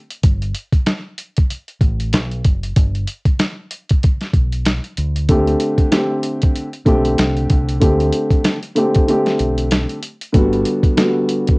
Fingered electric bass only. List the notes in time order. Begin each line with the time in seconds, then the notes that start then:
0.24 G1
1.81 A1
2.14 B1
2.45 F#1
2.77 G1
4.33 B1
4.98 D2
6.86 B1
7.19 C2
7.50 C2
7.82 D2
9.40 B1
10.35 G1